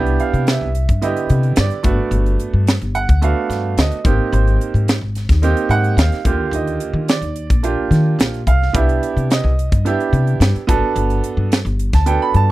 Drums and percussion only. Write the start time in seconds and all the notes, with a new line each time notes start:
0.07 closed hi-hat
0.20 closed hi-hat
0.34 closed hi-hat
0.47 snare, closed hi-hat
0.75 closed hi-hat
0.89 kick, closed hi-hat
1.02 closed hi-hat
1.17 closed hi-hat
1.30 closed hi-hat
1.43 closed hi-hat
1.56 snare, closed hi-hat
1.71 closed hi-hat
1.84 kick, closed hi-hat
2.12 closed hi-hat
2.26 closed hi-hat
2.40 closed hi-hat
2.67 snare, closed hi-hat
2.82 closed hi-hat
2.95 closed hi-hat
3.09 kick, closed hi-hat
3.22 closed hi-hat
3.50 snare, closed hi-hat
3.78 snare, closed hi-hat
3.92 closed hi-hat
4.05 kick, closed hi-hat
4.33 closed hi-hat
4.47 closed hi-hat
4.61 closed hi-hat
4.75 closed hi-hat
4.88 snare, closed hi-hat
5.15 snare, closed hi-hat
5.29 kick, snare, closed hi-hat
5.43 closed hi-hat
5.57 closed hi-hat
5.70 closed hi-hat
5.84 closed hi-hat
5.98 snare, closed hi-hat
6.12 snare, closed hi-hat
6.25 kick, closed hi-hat
6.53 closed hi-hat
6.67 closed hi-hat
6.80 closed hi-hat
7.08 snare, closed hi-hat
7.22 closed hi-hat
7.36 closed hi-hat
7.50 kick, closed hi-hat
7.64 closed hi-hat
7.92 snare, closed hi-hat
8.20 snare, closed hi-hat
8.34 closed hi-hat
8.47 kick, closed hi-hat
8.63 snare
8.75 kick, closed hi-hat
8.89 closed hi-hat
9.03 closed hi-hat
9.17 closed hi-hat
9.30 snare, closed hi-hat
9.59 closed hi-hat
9.72 kick, closed hi-hat
9.86 closed hi-hat
10.00 closed hi-hat
10.13 closed hi-hat
10.27 closed hi-hat
10.41 snare, closed hi-hat
10.56 closed hi-hat
10.69 kick, closed hi-hat
10.96 closed hi-hat
11.10 closed hi-hat
11.24 closed hi-hat
11.52 snare, closed hi-hat
11.66 closed hi-hat
11.79 closed hi-hat
11.93 kick, snare, closed hi-hat
12.06 closed hi-hat
12.34 closed hi-hat